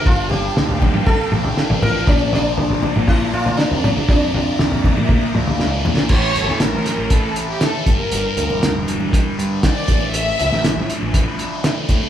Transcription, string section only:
\new Staff \with { instrumentName = "String section" } { \time 4/4 \tempo 4 = 119 << { f''1 | <d'' bes''>1~ | <d'' bes''>1 | \tuplet 3/2 { cis''4 a'8 } bes'4 \tuplet 3/2 { a'4 g'8 a'4 bes'8~ } |
bes'2 r4 d''4 | e''4. r2 r8 | } \\ { <g'' a''>1~ | <g'' a''>1 | e''1 | r1 |
r1 | r1 | } >> }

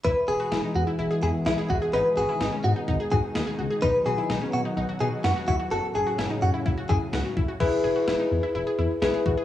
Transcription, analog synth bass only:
\new Staff \with { instrumentName = "Analog synth bass" } { \clef bass \time 4/4 \key e \major \tempo 4 = 127 e,,16 r16 e,,16 r16 e,,16 r16 e,16 r16 e,,16 r16 e,16 r16 b,,16 r16 a,,16 r16 | gis,,16 r16 gis,,16 r16 gis,,16 r16 gis,16 r16 gis,,16 r16 gis,16 r16 dis,16 r16 cis,16 r16 | b,,16 r16 b,,16 r16 b,,16 r16 b,16 r16 b,,16 r16 b,16 r16 fis,16 r16 dis,16 r16 | fis,,16 r16 fis,,16 r16 fis,,16 r16 fis,16 r16 fis,,16 r16 fis,16 r16 cis,16 r16 b,,16 r16 |
e,,16 r16 e,,16 r16 e,,16 r16 e,16 r16 e,,16 r16 e,16 r16 b,,16 r16 a,,16 r16 | }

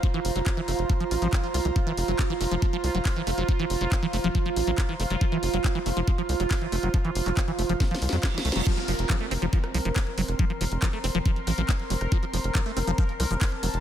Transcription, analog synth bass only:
\new Staff \with { instrumentName = "Analog synth bass" } { \clef bass \time 4/4 \key f \major \tempo 4 = 139 r8 f,,16 f,,16 r8 f,,16 f,,16 r8 a,,16 a,,16 r8 c,16 c,16 | r8 f,,16 f,,16 r8 f,,16 f,,16 r8 c,16 f,,16 r8 f,,16 f,,16 | r8 f,,16 f,,16 r8 f,,16 f,,16 r8 a,,16 a,,16 r8 f,,16 f,,16 | r8 f,,16 f,,16 r8 f,,16 f,,16 r8 c,16 f,,16 r8 f,,16 f,,16 |
r8 f,,16 f,,16 r8 f,,16 f,,16 r8 c,16 f,16 r8 c,16 f,,16 | r8 f,,16 f,,16 r8 f,,16 f,,16 r8 c,16 f,,16 r8 f,,16 f,,16 | r8 f,,16 f,,16 r8 f,,16 f,,16 r8 a,,16 a,,16 r8 f,,16 f,,16 | r8 f,,16 f,,16 r8 f,,16 f,,16 r8 c,16 f,,16 r8 f,,16 f,,16 | }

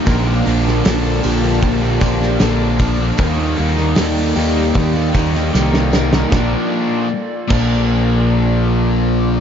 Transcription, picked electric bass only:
\new Staff \with { instrumentName = "Picked electric bass" } { \clef bass \time 4/4 \key bes \major \tempo 4 = 76 bes,,8 bes,,8 bes,,8 bes,,8 bes,,8 bes,,8 bes,,4 | ees,8 ees,8 ees,8 ees,8 ees,8 ees,8 c,4 | bes,,8 r4 bes,,2~ bes,,8 | }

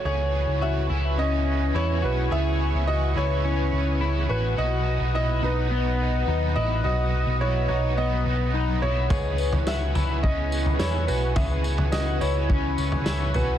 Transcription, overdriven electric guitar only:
\new Staff \with { instrumentName = "Overdriven electric guitar" } { \time 4/4 \key cis \minor \tempo 4 = 106 <cis e b cis' gis'>8 <b cis' gis'>8 <cis e b cis' gis'>8 <b cis' gis'>8 <e b cis' gis'>8 <b cis' gis'>8 <cis e b cis' gis'>8 <b cis' gis'>8 | <cis e b cis' gis'>8 <b cis' gis'>8 <cis e b cis' gis'>8 <b cis' gis'>8 <e b cis' gis'>8 <b cis' gis'>8 <cis e b cis' gis'>8 <b cis' gis'>8 | <b, fis b dis' fis'>8 <b dis' fis'>8 <b, fis b dis' fis'>8 <b dis' fis'>8 <fis b dis' fis'>8 <b dis' fis'>8 <b, fis b dis' fis'>8 <b dis' fis'>8 | <b, fis b dis' fis'>8 <b dis' fis'>8 <b, fis b dis' fis'>8 <b dis' fis'>8 <fis b dis' fis'>8 <b dis' fis'>8 <b, fis b dis' fis'>8 <b dis' fis'>8 |
<cis e b cis' gis'>8 <b cis' gis'>8 <cis e b cis' gis'>8 <b cis' gis'>8 <e b cis' gis'>8 <b cis' gis'>8 <cis e b cis' gis'>8 <b cis' gis'>8 | <cis e b cis' gis'>8 <b cis' gis'>8 <cis e b cis' gis'>8 <b cis' gis'>8 <e b cis' gis'>8 <b cis' gis'>8 <cis e b cis' gis'>8 <b cis' gis'>8 | }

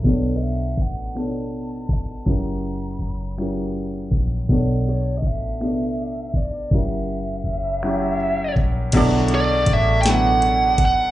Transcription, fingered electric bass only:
\new Staff \with { instrumentName = "Fingered electric bass" } { \clef bass \time 6/8 \key b \minor \tempo 4. = 54 b,,4 a,,2 | fis,,4 fis,,4. ais,,8 | b,,4 a,,2 | fis,,4 fis,,4. ais,,8 |
b,,4 a,,2 | }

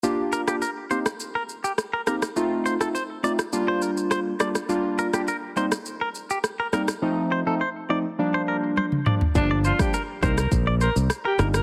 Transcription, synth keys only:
\new Staff \with { instrumentName = "Synth keys" } { \time 4/4 \key g \minor \tempo 4 = 103 <bes d' f' g'>8. <bes d' f' g'>16 r8 <bes c' ees' g'>16 r4. r16 <bes c' ees' g'>16 r16 | <a c' ees' f'>8. <a c' ees' f'>16 r8 <a c' ees' f'>16 r16 <g bes d' f'>4. <g bes d' f'>16 r16 | <g bes d' f'>8. <g bes d' f'>16 r8 <g bes c' ees'>16 r4. r16 <g bes c' ees'>16 r16 | <f a c' ees'>8. <f a c' ees'>16 r8 <f a c' ees'>16 r16 <f g bes d'>4. <f g bes d'>16 r16 |
<f g bes d'>8. <f g bes d'>16 r8 <g bes c' ees'>16 r4. r16 <g bes c' ees'>16 r16 | }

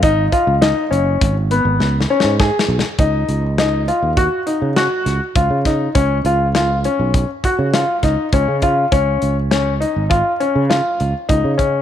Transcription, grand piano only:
\new Staff \with { instrumentName = "Grand piano" } { \time 5/4 \key des \mixolydian \tempo 4 = 101 ees'8 f'8 ees'8 des'4 ces'4 des'8 aes'4 | ees'4 ees'8 f'8 ges'8 ees'8 ges'4 f'8 ees'8 | des'8 f'8 f'8 des'4 ges'8 f'8 ees'8 des'8 f'8 | des'4 des'8 ees'8 f'8 des'8 f'4 ees'8 des'8 | }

